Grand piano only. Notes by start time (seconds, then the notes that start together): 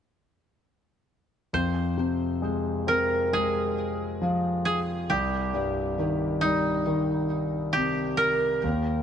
1.54 F2
1.98 C3
2.42 G#3
2.87 C4
3.33 G#3
4.21 F3
5.10 C2
5.54 G2
5.98 D#3
6.44 G3
6.87 D#3
7.76 C3
8.64 D#2